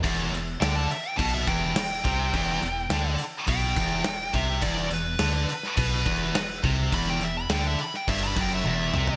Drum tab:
CC |x-x-x-x-x-x-x-x-|x-x-x-x-x-x-x-x-|x-x-x-x-x-x-x-x-|x-x-x-x-x-x-----|
SD |----o-------o---|----o-------o---|-o--o--o----o---|-o--o--o--------|
T1 |----------------|----------------|----------------|------------o---|
T2 |----------------|----------------|----------------|--------------o-|
FT |----------------|----------------|----------------|---------------o|
BD |o-------o-o---o-|o-------o-o---o-|o-------o-o---o-|o-------o-o-----|